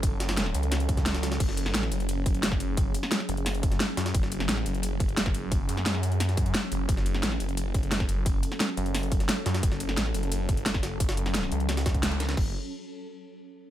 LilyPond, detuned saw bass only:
\new Staff \with { instrumentName = "Detuned saw bass" } { \clef bass \time 4/4 \key fis \minor \tempo 4 = 175 fis,,8 fis,,4 cis,2~ cis,8 | fis,,4 a,,8 fis,,4. fis,,4~ | fis,,8 r4 fis,,4. r8 fis,8 | fis,,4 a,,8 fis,,4. fis,,4~ |
fis,,8 fis,4. fis,4 r8 fis,,8 | fis,,4 a,,8 fis,,4. fis,,4~ | fis,,8 r4 fis,,4. r8 fis,8 | fis,,4 a,,8 fis,,4. fis,,4~ |
fis,,8 fis,,4 cis,2~ cis,8 | fis,,8 r2. r8 | }